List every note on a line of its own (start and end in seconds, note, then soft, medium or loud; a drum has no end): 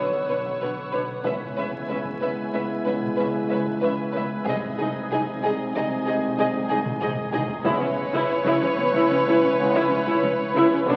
0.00 1.24 B1 medium
0.00 1.08 D3 medium
0.00 1.08 F#3 medium
0.00 1.21 B3 medium
0.00 1.21 B4 medium
0.00 1.21 C#5 medium
0.00 1.25 C#5 medium
0.00 1.25 F#5 medium
0.00 0.90 C#6 soft
0.00 0.25 D#6 soft
0.00 0.89 E6 soft
0.13 taiko medium
0.29 0.37 B1 soft
0.29 0.37 B2 soft
0.29 0.39 D4 soft
0.29 0.37 B4 soft
0.29 0.38 C#5 soft
0.46 taiko medium
0.61 0.70 B1 medium
0.61 0.70 B2 medium
0.61 0.71 D4 soft
0.61 0.70 B4 soft
0.61 0.69 C#5 soft
0.92 1.02 B1 medium
0.92 1.01 B2 medium
0.92 1.01 D4 soft
0.92 1.00 B4 medium
0.92 1.02 C#5 soft
1.23 4.46 C#2 medium
1.23 1.33 C#2 medium
1.23 1.33 C#3 medium
1.23 4.43 C#3 medium
1.23 4.43 G#3 medium
1.23 4.28 B3 medium
1.23 1.33 C#4 medium
1.23 4.28 E4 medium
1.23 1.32 B4 medium
1.23 4.43 B4 medium
1.23 1.33 E5 medium
1.23 4.47 E5 medium
1.23 4.47 G#5 medium
1.23 taiko loud
1.40 taiko mid soft
1.56 1.65 C#2 medium
1.56 1.65 C#3 medium
1.56 1.65 C#4 soft
1.56 1.64 B4 medium
1.56 1.65 E5 soft
1.72 taiko medium
1.88 1.97 C#2 medium
1.88 1.96 C#3 medium
1.88 1.98 C#4 soft
1.88 1.96 B4 soft
1.88 1.99 E5 soft
2.05 taiko medium
2.21 2.29 C#2 medium
2.21 2.29 C#3 medium
2.21 2.30 C#4 medium
2.21 2.29 B4 medium
2.21 2.30 E5 medium
2.53 2.61 C#2 medium
2.53 2.62 C#3 medium
2.53 2.61 C#4 medium
2.53 2.62 B4 soft
2.53 2.63 E5 medium
2.84 2.94 C#2 medium
2.84 2.95 C#3 medium
2.84 2.94 C#4 medium
2.84 2.92 B4 soft
2.84 2.96 E5 medium
3.02 taiko mid soft
3.16 3.27 C#2 medium
3.16 3.27 C#3 medium
3.16 3.26 C#4 medium
3.16 3.24 B4 soft
3.16 3.28 E5 medium
3.34 taiko medium
3.50 3.59 C#2 medium
3.50 3.59 C#3 medium
3.50 3.58 C#4 soft
3.50 3.59 B4 medium
3.50 3.59 E5 soft
3.66 taiko medium
3.81 3.90 C#2 medium
3.81 3.92 C#3 medium
3.81 3.90 C#4 medium
3.81 3.89 B4 medium
3.81 3.92 E5 medium
4.13 4.23 C#2 medium
4.13 4.24 C#3 medium
4.13 4.23 C#4 medium
4.13 4.21 B4 medium
4.13 4.24 E5 medium
4.45 7.64 C2 medium
4.45 4.56 C2 medium
4.45 4.55 C3 medium
4.45 7.48 C3 medium
4.45 7.48 G#3 medium
4.45 7.61 C4 medium
4.45 7.60 D#4 medium
4.45 4.55 D#4 medium
4.45 4.53 G#4 medium
4.45 7.66 G#4 medium
4.45 7.66 D#5 medium
4.45 4.57 D#5 medium
4.45 7.62 G#5 medium
4.45 taiko medium
4.63 taiko mid soft
4.79 4.87 C2 medium
4.79 4.87 C3 medium
4.79 4.88 D#4 medium
4.79 4.87 G#4 medium
4.79 4.89 D#5 medium
4.94 taiko medium
5.11 5.20 C2 medium
5.11 5.19 C3 medium
5.11 5.20 D#4 medium
5.11 5.19 G#4 medium
5.11 5.21 D#5 medium
5.26 taiko medium
5.42 5.51 C2 medium
5.42 5.51 C3 medium
5.42 5.50 D#4 medium
5.42 5.50 G#4 medium
5.42 5.53 D#5 medium
5.74 5.83 C2 medium
5.74 5.82 C3 medium
5.74 5.83 D#4 medium
5.74 5.84 G#4 medium
5.74 5.84 D#5 medium
6.06 6.14 C2 medium
6.06 6.15 C3 medium
6.06 6.14 D#4 medium
6.06 6.15 G#4 medium
6.06 6.15 D#5 medium
6.22 taiko mid soft
6.38 6.46 C2 medium
6.38 6.46 C3 medium
6.38 6.46 D#4 medium
6.38 6.47 G#4 medium
6.38 6.48 D#5 medium
6.54 taiko medium
6.69 6.77 C2 medium
6.69 6.78 C3 medium
6.69 6.79 D#4 medium
6.69 6.77 G#4 medium
6.69 6.77 D#5 medium
6.85 taiko mid medium
7.01 7.09 C2 medium
7.01 7.10 C3 medium
7.01 7.10 D#4 medium
7.01 7.09 G#4 medium
7.01 7.09 D#5 medium
7.01 taiko mid loud
7.16 taiko low-mid medium
7.32 7.41 C2 medium
7.32 7.41 C3 medium
7.32 7.41 D#4 medium
7.32 7.40 G#4 medium
7.32 7.41 D#5 medium
7.32 taiko mid medium
7.48 taiko low medium
7.63 7.71 C#2 medium
7.63 10.87 C#2 loud
7.63 7.70 C#3 medium
7.63 7.88 C#3 medium
7.63 7.88 G#3 medium
7.63 7.88 B3 medium
7.63 7.87 E4 medium
7.63 7.80 E4 medium
7.63 10.82 B4 medium
7.63 10.86 B4 medium
7.63 10.82 C#5 medium
7.63 10.86 E5 medium
7.63 10.82 G#5 medium
7.63 taiko loud
7.80 7.86 C#3 medium
7.80 7.87 C#4 medium
7.80 taiko mid soft
8.13 8.19 C#3 medium
8.13 8.28 E4 medium
8.13 taiko medium
8.44 8.51 C#3 loud
8.44 8.61 E4 medium
8.44 taiko medium
8.61 8.68 C#2 medium
8.61 8.67 C#3 medium
8.61 8.68 C#4 medium
8.76 8.83 C#3 medium
8.76 8.84 B3 medium
8.92 9.00 C#2 medium
8.92 8.99 C#3 loud
8.92 9.09 E4 loud
9.09 9.15 C#3 medium
9.09 9.16 C#4 medium
9.25 9.32 C#2 medium
9.25 9.32 C#3 medium
9.25 9.41 E4 medium
9.40 9.47 C#3 medium
9.40 9.49 C#4 medium
9.40 taiko mid soft
9.59 9.81 C#3 medium
9.59 9.81 G#3 medium
9.59 9.81 B3 medium
9.59 9.81 E4 medium
9.72 9.79 C#3 medium
9.72 9.89 E4 loud
9.72 taiko medium
9.89 9.97 C#2 medium
9.89 9.96 C#3 medium
9.89 9.96 C#4 medium
10.05 10.11 C#3 loud
10.05 10.22 E4 medium
10.05 taiko medium
10.22 10.29 C#2 medium
10.22 10.28 C#3 medium
10.22 10.30 C#4 medium
10.54 10.62 C#2 medium
10.54 10.60 C#3 medium
10.54 10.70 E4 medium
10.70 10.77 C#3 medium
10.70 10.78 C#4 medium
10.86 10.93 B1 medium
10.86 10.96 B1 loud
10.86 10.93 B2 loud
10.86 10.96 D3 medium
10.86 10.96 F#3 medium
10.86 10.96 B3 medium
10.86 10.96 C#4 medium
10.86 10.96 D4 medium
10.86 10.96 B4 medium
10.86 10.96 C#5 medium
10.86 10.96 F#5 medium
10.86 taiko loud